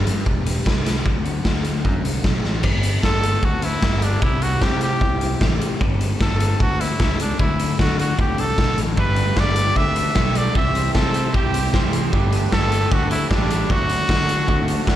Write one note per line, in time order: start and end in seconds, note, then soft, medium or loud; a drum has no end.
0.00 0.65 G3 medium
0.00 0.64 A3 medium
0.00 0.47 D4 medium
0.00 0.45 G4 medium
0.00 0.44 B4 medium
0.06 0.22 G2 medium
0.06 closed hi-hat medium
0.26 0.58 E1 medium
0.26 kick medium
0.45 0.65 D4 soft
0.45 0.65 G4 medium
0.45 0.66 B4 medium
0.45 closed hi-hat medium
0.65 0.98 C2 medium
0.65 1.05 A3 medium
0.65 0.87 D4 medium
0.65 0.84 G4 medium
0.65 0.83 B4 medium
0.65 kick loud
0.65 snare medium
0.84 1.06 D4 soft
0.84 1.04 G4 soft
0.84 1.03 B4 medium
0.84 snare medium
0.84 closed hi-hat medium
1.04 1.38 D2 medium
1.04 1.43 D3 medium
1.04 1.43 F#3 medium
1.04 1.25 A3 medium
1.04 1.24 D4 medium
1.04 1.23 F#4 medium
1.04 kick loud
1.24 1.44 A3 medium
1.24 1.44 D4 medium
1.24 1.45 F#4 medium
1.24 closed hi-hat medium
1.44 1.85 D2 medium
1.44 2.24 D3 medium
1.44 2.22 F#3 medium
1.44 2.05 A3 medium
1.44 2.04 D4 medium
1.44 2.03 F#4 medium
1.44 kick medium
1.44 snare loud
1.65 closed hi-hat medium
1.85 2.01 F#2 medium
1.85 kick medium
2.04 2.22 C2 medium
2.04 2.23 A3 soft
2.04 2.24 D4 soft
2.04 2.25 F#4 medium
2.04 closed hi-hat medium
2.24 2.42 B1 medium
2.24 2.62 F#3 medium
2.24 2.45 A3 medium
2.24 2.44 D4 medium
2.24 2.43 F#4 medium
2.24 kick medium
2.24 snare medium
2.44 2.62 A1 medium
2.44 2.63 A3 soft
2.44 2.63 D4 soft
2.44 2.63 F#4 medium
2.44 snare soft
2.63 2.96 G1 medium
2.63 3.02 G3 medium
2.63 2.84 B3 medium
2.63 2.84 D4 medium
2.63 2.83 A4 medium
2.63 kick loud
2.63 crash medium
2.83 3.02 B3 soft
2.83 3.03 D4 medium
2.83 3.04 A4 medium
2.83 closed hi-hat medium
3.03 3.36 G1 medium
3.03 3.65 G3 medium
3.03 3.23 B3 medium
3.03 3.22 D4 medium
3.03 3.46 A4 medium
3.03 3.21 A4 medium
3.03 kick loud
3.03 snare loud
3.22 3.63 B3 medium
3.22 3.62 D4 medium
3.22 3.61 A4 medium
3.22 closed hi-hat medium
3.43 3.75 D2 medium
3.43 3.65 F#4 medium
3.43 kick loud
3.62 3.82 B3 medium
3.62 3.82 D4 medium
3.62 4.05 E4 loud
3.62 3.83 A4 medium
3.62 closed hi-hat medium
3.82 4.15 G1 medium
3.82 4.22 G3 loud
3.82 4.21 B3 medium
3.82 4.22 D4 medium
3.82 4.22 A4 loud
3.82 kick loud
3.82 snare loud
4.02 4.24 D4 medium
4.02 closed hi-hat medium
4.22 4.54 C2 medium
4.22 4.62 C3 medium
4.22 4.62 G3 medium
4.22 4.43 C4 medium
4.22 4.44 E4 medium
4.22 4.42 E4 medium
4.22 4.41 G4 medium
4.22 kick loud
4.42 4.62 C4 medium
4.42 4.62 E4 medium
4.42 4.64 F#4 medium
4.42 4.64 G4 medium
4.42 closed hi-hat medium
4.61 4.94 C3 medium
4.61 5.42 G3 medium
4.61 4.83 C4 medium
4.61 4.81 E4 medium
4.61 4.82 G4 medium
4.61 4.81 G4 medium
4.61 kick loud
4.61 snare loud
4.81 5.22 C4 medium
4.81 5.21 E4 medium
4.81 5.19 G4 medium
4.81 5.38 G4 medium
4.81 closed hi-hat medium
5.01 5.34 C2 medium
5.01 kick medium
5.21 5.41 C4 soft
5.21 5.42 E4 medium
5.21 5.43 G4 medium
5.21 closed hi-hat medium
5.41 5.57 A1 medium
5.41 5.80 C3 medium
5.41 5.80 G3 medium
5.41 5.81 C4 medium
5.41 5.81 E4 medium
5.41 5.81 G4 loud
5.41 kick loud
5.41 snare loud
5.61 closed hi-hat medium
5.81 6.13 G1 medium
5.81 6.19 G3 medium
5.81 6.02 B3 medium
5.81 6.02 D4 medium
5.81 6.01 A4 medium
5.81 kick loud
6.01 6.20 B3 medium
6.01 6.21 D4 medium
6.01 6.22 A4 medium
6.01 closed hi-hat medium
6.20 6.53 G1 medium
6.20 6.60 G3 medium
6.20 6.42 B3 medium
6.20 6.42 D4 medium
6.20 6.62 A4 medium
6.20 6.40 A4 medium
6.20 kick loud
6.20 snare loud
6.40 6.81 B3 medium
6.40 6.81 D4 medium
6.40 6.79 A4 medium
6.40 closed hi-hat medium
6.60 6.93 D2 medium
6.60 6.82 F#4 medium
6.60 kick loud
6.80 7.00 B3 medium
6.80 7.02 D4 medium
6.80 7.20 E4 medium
6.80 7.02 A4 medium
6.80 closed hi-hat medium
7.00 7.32 C#2 medium
7.00 7.39 G3 medium
7.00 7.39 B3 loud
7.00 7.41 D4 medium
7.00 7.41 A4 loud
7.00 kick loud
7.00 snare loud
7.09 snare soft
7.20 7.39 D4 medium
7.20 closed hi-hat medium
7.39 7.72 D2 medium
7.39 7.79 D3 medium
7.39 7.78 F#3 medium
7.39 7.62 A3 medium
7.39 7.61 D4 medium
7.39 7.77 E4 medium
7.39 7.60 A4 medium
7.39 kick loud
7.59 7.80 A3 medium
7.59 7.81 D4 medium
7.59 7.81 A4 medium
7.59 closed hi-hat medium
7.79 8.11 D3 medium
7.79 8.19 F#3 medium
7.79 8.01 A3 medium
7.79 7.99 D4 medium
7.79 7.98 F#4 medium
7.79 7.98 A4 medium
7.79 kick loud
7.79 snare loud
7.99 8.40 A3 medium
7.99 8.39 D4 medium
7.99 8.18 F#4 medium
7.99 8.38 A4 medium
7.99 closed hi-hat medium
8.18 8.35 D2 loud
8.18 8.42 G4 medium
8.18 kick loud
8.38 8.56 C2 medium
8.38 8.58 A3 medium
8.38 8.58 D4 medium
8.38 8.59 A4 medium
8.38 8.79 A4 loud
8.38 closed hi-hat medium
8.58 8.76 B1 medium
8.58 8.96 D3 medium
8.58 8.97 F#3 medium
8.58 8.97 A3 medium
8.58 8.97 D4 medium
8.58 8.97 A4 medium
8.58 kick loud
8.58 snare loud
8.68 snare soft
8.78 8.96 A1 medium
8.78 closed hi-hat medium
8.97 9.30 G1 medium
8.97 9.39 G3 medium
8.97 9.35 A3 medium
8.97 9.19 D4 medium
8.97 9.37 G4 medium
8.97 9.18 A4 medium
8.97 9.40 B4 medium
8.97 9.17 B4 medium
8.97 kick loud
9.16 9.36 D4 medium
9.16 9.37 A4 medium
9.16 9.37 B4 medium
9.16 closed hi-hat medium
9.36 9.69 G1 medium
9.36 9.76 A3 medium
9.36 9.58 D4 medium
9.36 9.57 G4 medium
9.36 9.57 A4 medium
9.36 9.55 B4 medium
9.36 9.79 D5 medium
9.36 kick loud
9.36 snare loud
9.56 9.96 D4 medium
9.56 9.77 G4 medium
9.56 9.95 A4 medium
9.56 9.94 B4 medium
9.56 closed hi-hat medium
9.76 10.08 D2 medium
9.76 10.14 A3 medium
9.76 10.15 D4 medium
9.76 10.16 G4 medium
9.76 10.16 B4 medium
9.76 10.38 E5 loud
9.76 kick medium
9.95 10.16 D4 soft
9.95 10.16 A4 medium
9.95 10.17 B4 medium
9.95 closed hi-hat medium
10.15 10.48 B1 medium
10.15 10.55 G3 medium
10.15 10.55 A3 medium
10.15 10.55 D4 medium
10.15 10.36 G4 loud
10.15 10.55 A4 loud
10.15 10.55 B4 loud
10.15 kick loud
10.15 snare loud
10.35 10.55 D4 medium
10.35 10.56 G4 medium
10.35 10.54 B4 medium
10.35 10.56 D5 medium
10.35 closed hi-hat medium
10.55 10.87 C2 medium
10.55 10.95 C3 medium
10.55 11.14 E3 medium
10.55 11.72 G3 medium
10.55 10.75 C4 medium
10.55 10.75 E4 medium
10.55 10.75 G4 medium
10.55 10.73 C5 medium
10.55 10.93 E5 loud
10.55 kick loud
10.74 10.93 C4 medium
10.74 10.93 E4 medium
10.74 10.95 G4 medium
10.74 10.95 C5 medium
10.74 closed hi-hat medium
10.94 11.27 C3 medium
10.94 11.17 G3 medium
10.94 11.15 C4 medium
10.94 11.15 E4 medium
10.94 11.14 G4 medium
10.94 11.31 A4 medium
10.94 11.13 C5 medium
10.94 kick loud
10.94 snare loud
11.14 11.32 G3 medium
11.14 11.54 C4 medium
11.14 11.54 E4 medium
11.14 11.53 G4 medium
11.14 11.52 C5 medium
11.14 closed hi-hat medium
11.33 11.66 C2 medium
11.33 11.73 G3 medium
11.33 11.73 C4 medium
11.33 11.74 E4 medium
11.33 11.90 G4 medium
11.33 11.74 C5 medium
11.33 kick loud
11.53 11.72 C4 soft
11.53 11.73 E4 medium
11.53 11.73 G4 medium
11.53 11.73 C5 medium
11.53 closed hi-hat medium
11.73 11.90 C2 medium
11.73 12.11 C3 loud
11.73 12.11 E3 loud
11.73 12.11 G3 loud
11.73 12.12 C4 medium
11.73 12.12 E4 loud
11.73 12.12 G4 medium
11.73 12.12 C5 loud
11.73 kick loud
11.73 snare loud
11.93 12.10 G3 medium
11.93 12.12 C4 medium
11.93 12.12 E4 medium
11.93 12.11 C5 medium
11.93 closed hi-hat medium
12.12 12.45 G1 medium
12.12 12.52 G3 medium
12.12 12.52 A3 medium
12.12 12.33 D4 medium
12.12 12.52 G4 medium
12.12 12.32 A4 medium
12.12 12.30 B4 medium
12.12 kick loud
12.31 12.52 D4 medium
12.31 12.53 A4 medium
12.31 12.52 B4 medium
12.31 closed hi-hat medium
12.52 12.84 G1 medium
12.52 13.13 A3 medium
12.52 12.73 D4 medium
12.52 12.72 G4 medium
12.52 12.94 A4 medium
12.52 12.73 A4 medium
12.52 12.71 B4 medium
12.52 kick loud
12.52 snare loud
12.72 13.12 D4 medium
12.72 12.92 G4 medium
12.72 13.10 A4 medium
12.72 13.08 B4 medium
12.72 closed hi-hat medium
12.91 13.23 D2 medium
12.91 13.29 A3 medium
12.91 13.31 D4 medium
12.91 13.10 F#4 medium
12.91 13.31 G4 medium
12.91 13.32 B4 medium
12.91 kick loud
13.10 13.31 D4 medium
13.10 13.29 E4 medium
13.10 13.31 A4 medium
13.10 13.31 B4 medium
13.10 closed hi-hat medium
13.30 13.62 A1 medium
13.30 13.68 G3 medium
13.30 13.69 A3 loud
13.30 13.73 D4 medium
13.30 13.71 D4 medium
13.30 13.50 G4 medium
13.30 13.69 A4 loud
13.30 13.69 B4 medium
13.30 kick loud
13.30 snare loud
13.41 snare soft
13.49 13.70 D4 medium
13.49 13.69 G4 medium
13.49 13.68 B4 medium
13.49 closed hi-hat medium
13.69 14.01 D2 medium
13.69 14.09 D3 medium
13.69 14.07 F#3 medium
13.69 13.90 A3 medium
13.69 13.89 D4 medium
13.69 14.96 F#4 loud
13.69 13.88 F#4 medium
13.69 kick loud
13.89 14.08 A3 medium
13.89 14.08 D4 medium
13.89 14.09 F#4 medium
13.89 closed hi-hat medium
14.08 14.46 D3 medium
14.08 14.41 D3 medium
14.08 14.47 F#3 medium
14.08 14.29 A3 medium
14.08 14.28 D4 medium
14.08 14.27 F#4 medium
14.08 kick loud
14.08 snare loud
14.28 14.68 A3 medium
14.28 14.67 D4 medium
14.28 14.66 F#4 medium
14.28 closed hi-hat medium
14.47 14.80 D2 medium
14.47 14.84 D3 medium
14.47 14.86 A3 medium
14.47 14.87 D4 medium
14.47 14.87 F#4 medium
14.47 kick medium
14.67 14.87 A3 soft
14.67 14.87 D4 medium
14.67 14.87 F#4 medium
14.67 closed hi-hat medium
14.86 14.96 D2 medium
14.86 14.96 D3 medium
14.86 14.96 F#3 medium
14.86 14.96 A3 medium
14.86 14.96 D4 medium
14.86 14.96 F#4 loud
14.86 kick loud
14.86 snare loud